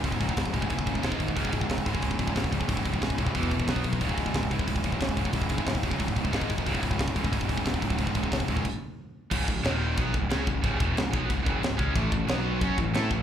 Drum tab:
CC |----------------|----------------|----------------|----------------|
HH |o-o-o-o-o-o-o-o-|o-o-o-o-o-o-o-o-|o-o-o-o-o-o-o-o-|o-o-o-o-o-o-o-o-|
SD |----o-------o---|----o-------o---|----o-------o---|----o-------o---|
BD |oooooooooooooooo|oooooooooooooooo|oooooooooooooooo|oooooooooooooooo|

CC |----------------|----------------|--------x-------|x---x---x---x---|
HH |o-o-o-o-o-o-o-o-|o-o-o-o-o-o-o-o-|o-o-o-o---------|----------------|
SD |----o-------o---|----o-------o---|----o-----------|----o-------o---|
BD |oooooooooooooooo|oooooooooooooooo|ooooooooo-------|o-o-----o-o---o-|

CC |x---x---x---x---|x---x---x---x---|
HH |----------------|----------------|
SD |----o-------o---|----o-------o---|
BD |o-o---o-o-o---o-|o-o-----o-o---o-|